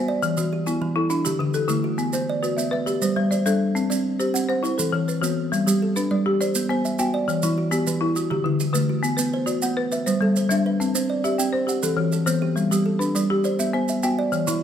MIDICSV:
0, 0, Header, 1, 4, 480
1, 0, Start_track
1, 0, Key_signature, 1, "major"
1, 0, Tempo, 293974
1, 374, Time_signature, 12, 3, 24, 8
1, 23893, End_track
2, 0, Start_track
2, 0, Title_t, "Marimba"
2, 0, Program_c, 0, 12
2, 0, Note_on_c, 0, 59, 74
2, 0, Note_on_c, 0, 72, 67
2, 0, Note_on_c, 0, 78, 55
2, 368, Note_on_c, 0, 52, 81
2, 373, Note_off_c, 0, 78, 0
2, 375, Note_off_c, 0, 59, 0
2, 608, Note_on_c, 0, 66, 59
2, 615, Note_off_c, 0, 72, 0
2, 850, Note_off_c, 0, 52, 0
2, 1085, Note_on_c, 0, 64, 60
2, 1093, Note_on_c, 0, 59, 68
2, 1330, Note_off_c, 0, 66, 0
2, 1544, Note_off_c, 0, 64, 0
2, 1564, Note_on_c, 0, 64, 86
2, 1572, Note_off_c, 0, 59, 0
2, 1795, Note_on_c, 0, 62, 68
2, 2037, Note_on_c, 0, 67, 67
2, 2049, Note_off_c, 0, 64, 0
2, 2273, Note_on_c, 0, 50, 76
2, 2516, Note_on_c, 0, 69, 66
2, 2523, Note_off_c, 0, 62, 0
2, 2726, Note_off_c, 0, 50, 0
2, 2746, Note_on_c, 0, 50, 74
2, 2746, Note_on_c, 0, 64, 64
2, 2764, Note_off_c, 0, 67, 0
2, 3234, Note_on_c, 0, 59, 76
2, 3238, Note_off_c, 0, 50, 0
2, 3242, Note_off_c, 0, 69, 0
2, 3477, Note_on_c, 0, 72, 64
2, 3478, Note_off_c, 0, 64, 0
2, 3722, Note_off_c, 0, 59, 0
2, 3960, Note_on_c, 0, 71, 57
2, 3962, Note_on_c, 0, 66, 72
2, 4190, Note_on_c, 0, 76, 55
2, 4203, Note_off_c, 0, 72, 0
2, 4408, Note_off_c, 0, 71, 0
2, 4428, Note_on_c, 0, 71, 82
2, 4445, Note_off_c, 0, 66, 0
2, 4676, Note_on_c, 0, 67, 71
2, 4919, Note_off_c, 0, 71, 0
2, 4919, Note_off_c, 0, 76, 0
2, 4928, Note_on_c, 0, 72, 62
2, 5165, Note_on_c, 0, 55, 75
2, 5402, Note_off_c, 0, 67, 0
2, 5402, Note_on_c, 0, 74, 69
2, 5630, Note_off_c, 0, 55, 0
2, 5647, Note_on_c, 0, 69, 66
2, 5648, Note_off_c, 0, 72, 0
2, 5649, Note_on_c, 0, 55, 76
2, 6124, Note_on_c, 0, 60, 78
2, 6125, Note_off_c, 0, 74, 0
2, 6129, Note_off_c, 0, 55, 0
2, 6365, Note_on_c, 0, 74, 60
2, 6367, Note_off_c, 0, 69, 0
2, 6606, Note_off_c, 0, 60, 0
2, 6849, Note_on_c, 0, 72, 62
2, 6851, Note_on_c, 0, 67, 68
2, 7085, Note_on_c, 0, 78, 62
2, 7087, Note_off_c, 0, 74, 0
2, 7301, Note_off_c, 0, 72, 0
2, 7324, Note_on_c, 0, 72, 80
2, 7329, Note_off_c, 0, 67, 0
2, 7555, Note_on_c, 0, 64, 71
2, 7566, Note_off_c, 0, 72, 0
2, 7801, Note_on_c, 0, 69, 62
2, 7806, Note_off_c, 0, 78, 0
2, 8041, Note_on_c, 0, 52, 78
2, 8281, Note_off_c, 0, 64, 0
2, 8295, Note_on_c, 0, 71, 60
2, 8495, Note_off_c, 0, 52, 0
2, 8515, Note_on_c, 0, 52, 74
2, 8518, Note_on_c, 0, 66, 59
2, 8524, Note_off_c, 0, 69, 0
2, 9001, Note_off_c, 0, 52, 0
2, 9011, Note_off_c, 0, 71, 0
2, 9012, Note_on_c, 0, 55, 77
2, 9242, Note_off_c, 0, 66, 0
2, 9251, Note_on_c, 0, 67, 62
2, 9489, Note_off_c, 0, 55, 0
2, 9733, Note_on_c, 0, 62, 71
2, 9733, Note_on_c, 0, 71, 65
2, 9968, Note_off_c, 0, 67, 0
2, 9975, Note_on_c, 0, 74, 62
2, 10210, Note_off_c, 0, 62, 0
2, 10220, Note_on_c, 0, 67, 91
2, 10440, Note_off_c, 0, 74, 0
2, 10449, Note_off_c, 0, 71, 0
2, 10453, Note_off_c, 0, 67, 0
2, 10459, Note_on_c, 0, 74, 69
2, 10930, Note_on_c, 0, 59, 82
2, 11172, Note_off_c, 0, 74, 0
2, 11395, Note_off_c, 0, 59, 0
2, 11415, Note_on_c, 0, 59, 77
2, 11416, Note_on_c, 0, 79, 70
2, 11883, Note_on_c, 0, 52, 81
2, 11890, Note_off_c, 0, 59, 0
2, 12130, Note_off_c, 0, 79, 0
2, 12137, Note_on_c, 0, 64, 66
2, 12364, Note_off_c, 0, 52, 0
2, 12591, Note_on_c, 0, 59, 74
2, 12592, Note_on_c, 0, 67, 65
2, 12846, Note_on_c, 0, 71, 57
2, 12850, Note_off_c, 0, 64, 0
2, 13077, Note_on_c, 0, 64, 93
2, 13078, Note_off_c, 0, 59, 0
2, 13318, Note_off_c, 0, 67, 0
2, 13320, Note_off_c, 0, 64, 0
2, 13325, Note_on_c, 0, 66, 67
2, 13559, Note_on_c, 0, 67, 68
2, 13565, Note_off_c, 0, 71, 0
2, 13784, Note_on_c, 0, 50, 80
2, 14044, Note_off_c, 0, 66, 0
2, 14238, Note_off_c, 0, 50, 0
2, 14257, Note_on_c, 0, 50, 78
2, 14265, Note_on_c, 0, 71, 70
2, 14281, Note_off_c, 0, 67, 0
2, 14738, Note_on_c, 0, 59, 80
2, 14750, Note_off_c, 0, 50, 0
2, 14948, Note_off_c, 0, 71, 0
2, 14968, Note_on_c, 0, 71, 65
2, 15231, Note_off_c, 0, 59, 0
2, 15448, Note_on_c, 0, 66, 76
2, 15450, Note_on_c, 0, 74, 62
2, 15706, Note_off_c, 0, 71, 0
2, 15711, Note_on_c, 0, 78, 70
2, 15946, Note_off_c, 0, 66, 0
2, 15949, Note_on_c, 0, 71, 89
2, 16174, Note_off_c, 0, 71, 0
2, 16187, Note_off_c, 0, 74, 0
2, 16193, Note_on_c, 0, 71, 70
2, 16431, Note_on_c, 0, 72, 67
2, 16438, Note_off_c, 0, 78, 0
2, 16665, Note_on_c, 0, 55, 79
2, 16919, Note_off_c, 0, 71, 0
2, 17115, Note_off_c, 0, 55, 0
2, 17134, Note_on_c, 0, 55, 80
2, 17134, Note_on_c, 0, 76, 66
2, 17158, Note_off_c, 0, 72, 0
2, 17630, Note_off_c, 0, 55, 0
2, 17635, Note_on_c, 0, 60, 81
2, 17870, Note_off_c, 0, 76, 0
2, 17875, Note_on_c, 0, 72, 61
2, 18120, Note_off_c, 0, 60, 0
2, 18355, Note_on_c, 0, 67, 73
2, 18355, Note_on_c, 0, 76, 61
2, 18586, Note_on_c, 0, 79, 63
2, 18601, Note_off_c, 0, 72, 0
2, 18819, Note_on_c, 0, 72, 85
2, 18841, Note_off_c, 0, 67, 0
2, 19052, Note_on_c, 0, 67, 63
2, 19072, Note_off_c, 0, 72, 0
2, 19081, Note_off_c, 0, 76, 0
2, 19311, Note_on_c, 0, 69, 64
2, 19316, Note_off_c, 0, 79, 0
2, 19538, Note_on_c, 0, 52, 83
2, 19790, Note_off_c, 0, 67, 0
2, 20003, Note_off_c, 0, 52, 0
2, 20019, Note_on_c, 0, 72, 63
2, 20022, Note_on_c, 0, 52, 79
2, 20039, Note_off_c, 0, 69, 0
2, 20504, Note_on_c, 0, 55, 77
2, 20515, Note_off_c, 0, 52, 0
2, 20753, Note_off_c, 0, 72, 0
2, 20757, Note_on_c, 0, 67, 61
2, 20996, Note_off_c, 0, 55, 0
2, 21212, Note_on_c, 0, 71, 66
2, 21215, Note_on_c, 0, 62, 71
2, 21469, Note_on_c, 0, 74, 57
2, 21483, Note_off_c, 0, 67, 0
2, 21712, Note_off_c, 0, 62, 0
2, 21720, Note_on_c, 0, 67, 89
2, 21929, Note_off_c, 0, 74, 0
2, 21949, Note_on_c, 0, 74, 65
2, 21951, Note_off_c, 0, 71, 0
2, 21964, Note_off_c, 0, 67, 0
2, 22193, Note_on_c, 0, 76, 65
2, 22425, Note_on_c, 0, 59, 85
2, 22679, Note_off_c, 0, 74, 0
2, 22895, Note_off_c, 0, 59, 0
2, 22915, Note_on_c, 0, 59, 75
2, 22915, Note_on_c, 0, 79, 64
2, 22922, Note_off_c, 0, 76, 0
2, 23382, Note_on_c, 0, 52, 73
2, 23403, Note_off_c, 0, 59, 0
2, 23630, Note_on_c, 0, 64, 65
2, 23643, Note_off_c, 0, 79, 0
2, 23877, Note_off_c, 0, 52, 0
2, 23893, Note_off_c, 0, 64, 0
2, 23893, End_track
3, 0, Start_track
3, 0, Title_t, "Kalimba"
3, 0, Program_c, 1, 108
3, 0, Note_on_c, 1, 66, 75
3, 0, Note_on_c, 1, 76, 58
3, 137, Note_on_c, 1, 74, 69
3, 375, Note_off_c, 1, 66, 0
3, 376, Note_off_c, 1, 76, 0
3, 618, Note_on_c, 1, 52, 82
3, 855, Note_off_c, 1, 74, 0
3, 859, Note_on_c, 1, 67, 61
3, 1095, Note_off_c, 1, 52, 0
3, 1333, Note_on_c, 1, 52, 87
3, 1569, Note_on_c, 1, 69, 56
3, 1575, Note_off_c, 1, 67, 0
3, 1812, Note_off_c, 1, 52, 0
3, 1812, Note_on_c, 1, 64, 63
3, 2063, Note_on_c, 1, 50, 72
3, 2289, Note_off_c, 1, 69, 0
3, 2291, Note_off_c, 1, 64, 0
3, 2293, Note_on_c, 1, 67, 68
3, 2526, Note_off_c, 1, 67, 0
3, 2537, Note_off_c, 1, 50, 0
3, 2545, Note_on_c, 1, 67, 58
3, 2774, Note_on_c, 1, 57, 77
3, 3005, Note_on_c, 1, 66, 68
3, 3252, Note_off_c, 1, 57, 0
3, 3257, Note_off_c, 1, 67, 0
3, 3500, Note_on_c, 1, 59, 81
3, 3727, Note_off_c, 1, 66, 0
3, 3747, Note_on_c, 1, 74, 66
3, 3975, Note_off_c, 1, 59, 0
3, 4210, Note_on_c, 1, 59, 77
3, 4457, Note_on_c, 1, 76, 63
3, 4458, Note_off_c, 1, 74, 0
3, 4688, Note_on_c, 1, 71, 65
3, 4689, Note_off_c, 1, 59, 0
3, 4930, Note_on_c, 1, 55, 80
3, 5168, Note_off_c, 1, 71, 0
3, 5168, Note_on_c, 1, 72, 65
3, 5173, Note_off_c, 1, 76, 0
3, 5400, Note_off_c, 1, 72, 0
3, 5409, Note_off_c, 1, 55, 0
3, 5420, Note_on_c, 1, 72, 60
3, 5655, Note_on_c, 1, 62, 69
3, 6131, Note_off_c, 1, 62, 0
3, 6134, Note_off_c, 1, 72, 0
3, 6371, Note_on_c, 1, 60, 82
3, 6849, Note_off_c, 1, 60, 0
3, 7087, Note_on_c, 1, 60, 78
3, 7342, Note_on_c, 1, 78, 63
3, 7568, Note_off_c, 1, 60, 0
3, 7571, Note_on_c, 1, 72, 63
3, 7824, Note_on_c, 1, 52, 77
3, 8049, Note_off_c, 1, 72, 0
3, 8055, Note_off_c, 1, 78, 0
3, 8071, Note_on_c, 1, 69, 56
3, 8296, Note_off_c, 1, 52, 0
3, 8539, Note_on_c, 1, 59, 73
3, 8779, Note_off_c, 1, 69, 0
3, 9013, Note_off_c, 1, 59, 0
3, 9262, Note_on_c, 1, 55, 87
3, 9510, Note_on_c, 1, 69, 61
3, 9734, Note_off_c, 1, 55, 0
3, 9976, Note_on_c, 1, 55, 89
3, 10218, Note_off_c, 1, 69, 0
3, 10451, Note_off_c, 1, 55, 0
3, 10465, Note_on_c, 1, 72, 66
3, 10707, Note_on_c, 1, 59, 83
3, 10929, Note_off_c, 1, 72, 0
3, 10948, Note_on_c, 1, 72, 66
3, 11176, Note_off_c, 1, 59, 0
3, 11185, Note_on_c, 1, 76, 60
3, 11420, Note_on_c, 1, 66, 85
3, 11656, Note_off_c, 1, 72, 0
3, 11657, Note_on_c, 1, 74, 71
3, 11892, Note_off_c, 1, 66, 0
3, 11895, Note_off_c, 1, 76, 0
3, 12132, Note_on_c, 1, 52, 90
3, 12370, Note_off_c, 1, 74, 0
3, 12373, Note_on_c, 1, 66, 63
3, 12608, Note_off_c, 1, 52, 0
3, 12856, Note_on_c, 1, 52, 83
3, 13088, Note_off_c, 1, 66, 0
3, 13330, Note_off_c, 1, 52, 0
3, 13567, Note_on_c, 1, 50, 83
3, 13810, Note_on_c, 1, 64, 67
3, 14045, Note_off_c, 1, 50, 0
3, 14051, Note_on_c, 1, 67, 62
3, 14281, Note_on_c, 1, 57, 71
3, 14522, Note_on_c, 1, 66, 66
3, 14527, Note_off_c, 1, 64, 0
3, 14762, Note_off_c, 1, 57, 0
3, 14767, Note_off_c, 1, 67, 0
3, 15001, Note_on_c, 1, 59, 86
3, 15243, Note_off_c, 1, 66, 0
3, 15243, Note_on_c, 1, 72, 69
3, 15483, Note_off_c, 1, 59, 0
3, 15727, Note_on_c, 1, 59, 85
3, 15964, Note_off_c, 1, 72, 0
3, 16204, Note_on_c, 1, 76, 68
3, 16205, Note_off_c, 1, 59, 0
3, 16440, Note_on_c, 1, 55, 83
3, 16684, Note_off_c, 1, 76, 0
3, 16688, Note_on_c, 1, 69, 70
3, 16922, Note_off_c, 1, 55, 0
3, 16934, Note_on_c, 1, 72, 60
3, 17166, Note_on_c, 1, 62, 82
3, 17407, Note_off_c, 1, 69, 0
3, 17407, Note_on_c, 1, 71, 70
3, 17646, Note_off_c, 1, 62, 0
3, 17650, Note_off_c, 1, 72, 0
3, 17882, Note_on_c, 1, 60, 86
3, 18118, Note_on_c, 1, 74, 65
3, 18126, Note_off_c, 1, 71, 0
3, 18364, Note_off_c, 1, 60, 0
3, 18606, Note_on_c, 1, 60, 82
3, 18842, Note_off_c, 1, 74, 0
3, 19082, Note_on_c, 1, 78, 59
3, 19086, Note_off_c, 1, 60, 0
3, 19319, Note_on_c, 1, 52, 85
3, 19560, Note_on_c, 1, 66, 62
3, 19564, Note_off_c, 1, 78, 0
3, 19797, Note_on_c, 1, 69, 65
3, 19803, Note_off_c, 1, 52, 0
3, 20038, Note_on_c, 1, 59, 77
3, 20279, Note_on_c, 1, 67, 71
3, 20284, Note_off_c, 1, 66, 0
3, 20522, Note_off_c, 1, 59, 0
3, 20522, Note_off_c, 1, 69, 0
3, 20759, Note_on_c, 1, 55, 82
3, 20992, Note_on_c, 1, 69, 65
3, 21003, Note_off_c, 1, 67, 0
3, 21244, Note_off_c, 1, 55, 0
3, 21479, Note_on_c, 1, 55, 86
3, 21720, Note_off_c, 1, 69, 0
3, 21955, Note_on_c, 1, 72, 65
3, 21964, Note_off_c, 1, 55, 0
3, 22198, Note_on_c, 1, 59, 82
3, 22416, Note_off_c, 1, 72, 0
3, 22435, Note_on_c, 1, 72, 65
3, 22684, Note_off_c, 1, 59, 0
3, 22687, Note_on_c, 1, 76, 64
3, 22928, Note_on_c, 1, 66, 77
3, 23163, Note_off_c, 1, 72, 0
3, 23163, Note_on_c, 1, 74, 71
3, 23409, Note_off_c, 1, 66, 0
3, 23409, Note_off_c, 1, 76, 0
3, 23644, Note_on_c, 1, 52, 92
3, 23887, Note_off_c, 1, 74, 0
3, 23893, Note_off_c, 1, 52, 0
3, 23893, End_track
4, 0, Start_track
4, 0, Title_t, "Drums"
4, 371, Note_on_c, 9, 70, 48
4, 534, Note_off_c, 9, 70, 0
4, 609, Note_on_c, 9, 70, 69
4, 772, Note_off_c, 9, 70, 0
4, 1091, Note_on_c, 9, 70, 51
4, 1254, Note_off_c, 9, 70, 0
4, 1799, Note_on_c, 9, 70, 48
4, 1962, Note_off_c, 9, 70, 0
4, 2047, Note_on_c, 9, 70, 70
4, 2210, Note_off_c, 9, 70, 0
4, 2512, Note_on_c, 9, 70, 49
4, 2675, Note_off_c, 9, 70, 0
4, 2758, Note_on_c, 9, 70, 65
4, 2921, Note_off_c, 9, 70, 0
4, 3239, Note_on_c, 9, 70, 43
4, 3402, Note_off_c, 9, 70, 0
4, 3478, Note_on_c, 9, 70, 71
4, 3641, Note_off_c, 9, 70, 0
4, 3976, Note_on_c, 9, 70, 54
4, 4139, Note_off_c, 9, 70, 0
4, 4216, Note_on_c, 9, 70, 68
4, 4379, Note_off_c, 9, 70, 0
4, 4689, Note_on_c, 9, 70, 48
4, 4852, Note_off_c, 9, 70, 0
4, 4930, Note_on_c, 9, 70, 74
4, 5094, Note_off_c, 9, 70, 0
4, 5417, Note_on_c, 9, 70, 51
4, 5580, Note_off_c, 9, 70, 0
4, 5658, Note_on_c, 9, 70, 72
4, 5821, Note_off_c, 9, 70, 0
4, 6140, Note_on_c, 9, 70, 48
4, 6304, Note_off_c, 9, 70, 0
4, 6390, Note_on_c, 9, 70, 80
4, 6553, Note_off_c, 9, 70, 0
4, 6858, Note_on_c, 9, 70, 57
4, 7021, Note_off_c, 9, 70, 0
4, 7111, Note_on_c, 9, 70, 79
4, 7274, Note_off_c, 9, 70, 0
4, 7586, Note_on_c, 9, 70, 54
4, 7749, Note_off_c, 9, 70, 0
4, 7821, Note_on_c, 9, 70, 74
4, 7985, Note_off_c, 9, 70, 0
4, 8304, Note_on_c, 9, 70, 58
4, 8467, Note_off_c, 9, 70, 0
4, 8545, Note_on_c, 9, 70, 77
4, 8709, Note_off_c, 9, 70, 0
4, 9031, Note_on_c, 9, 70, 55
4, 9194, Note_off_c, 9, 70, 0
4, 9271, Note_on_c, 9, 70, 85
4, 9434, Note_off_c, 9, 70, 0
4, 9738, Note_on_c, 9, 70, 64
4, 9901, Note_off_c, 9, 70, 0
4, 10468, Note_on_c, 9, 70, 59
4, 10632, Note_off_c, 9, 70, 0
4, 10693, Note_on_c, 9, 70, 81
4, 10856, Note_off_c, 9, 70, 0
4, 11184, Note_on_c, 9, 70, 61
4, 11348, Note_off_c, 9, 70, 0
4, 11410, Note_on_c, 9, 70, 74
4, 11573, Note_off_c, 9, 70, 0
4, 11900, Note_on_c, 9, 70, 51
4, 12063, Note_off_c, 9, 70, 0
4, 12123, Note_on_c, 9, 70, 80
4, 12286, Note_off_c, 9, 70, 0
4, 12603, Note_on_c, 9, 70, 59
4, 12766, Note_off_c, 9, 70, 0
4, 12848, Note_on_c, 9, 70, 75
4, 13012, Note_off_c, 9, 70, 0
4, 13323, Note_on_c, 9, 70, 59
4, 13486, Note_off_c, 9, 70, 0
4, 14042, Note_on_c, 9, 70, 61
4, 14205, Note_off_c, 9, 70, 0
4, 14284, Note_on_c, 9, 70, 76
4, 14447, Note_off_c, 9, 70, 0
4, 14755, Note_on_c, 9, 70, 54
4, 14919, Note_off_c, 9, 70, 0
4, 14992, Note_on_c, 9, 70, 82
4, 15155, Note_off_c, 9, 70, 0
4, 15462, Note_on_c, 9, 70, 58
4, 15625, Note_off_c, 9, 70, 0
4, 15708, Note_on_c, 9, 70, 78
4, 15872, Note_off_c, 9, 70, 0
4, 16195, Note_on_c, 9, 70, 55
4, 16358, Note_off_c, 9, 70, 0
4, 16441, Note_on_c, 9, 70, 81
4, 16604, Note_off_c, 9, 70, 0
4, 16917, Note_on_c, 9, 70, 59
4, 17081, Note_off_c, 9, 70, 0
4, 17156, Note_on_c, 9, 70, 71
4, 17319, Note_off_c, 9, 70, 0
4, 17652, Note_on_c, 9, 70, 53
4, 17816, Note_off_c, 9, 70, 0
4, 17883, Note_on_c, 9, 70, 82
4, 18046, Note_off_c, 9, 70, 0
4, 18359, Note_on_c, 9, 70, 57
4, 18522, Note_off_c, 9, 70, 0
4, 18604, Note_on_c, 9, 70, 84
4, 18767, Note_off_c, 9, 70, 0
4, 19081, Note_on_c, 9, 70, 59
4, 19244, Note_off_c, 9, 70, 0
4, 19312, Note_on_c, 9, 70, 80
4, 19476, Note_off_c, 9, 70, 0
4, 19794, Note_on_c, 9, 70, 58
4, 19957, Note_off_c, 9, 70, 0
4, 20035, Note_on_c, 9, 70, 79
4, 20198, Note_off_c, 9, 70, 0
4, 20524, Note_on_c, 9, 70, 54
4, 20688, Note_off_c, 9, 70, 0
4, 20770, Note_on_c, 9, 70, 74
4, 20933, Note_off_c, 9, 70, 0
4, 21243, Note_on_c, 9, 70, 54
4, 21407, Note_off_c, 9, 70, 0
4, 21480, Note_on_c, 9, 70, 80
4, 21643, Note_off_c, 9, 70, 0
4, 21950, Note_on_c, 9, 70, 50
4, 22113, Note_off_c, 9, 70, 0
4, 22197, Note_on_c, 9, 70, 75
4, 22361, Note_off_c, 9, 70, 0
4, 22668, Note_on_c, 9, 70, 57
4, 22832, Note_off_c, 9, 70, 0
4, 22908, Note_on_c, 9, 70, 73
4, 23071, Note_off_c, 9, 70, 0
4, 23389, Note_on_c, 9, 70, 51
4, 23553, Note_off_c, 9, 70, 0
4, 23632, Note_on_c, 9, 70, 76
4, 23795, Note_off_c, 9, 70, 0
4, 23893, End_track
0, 0, End_of_file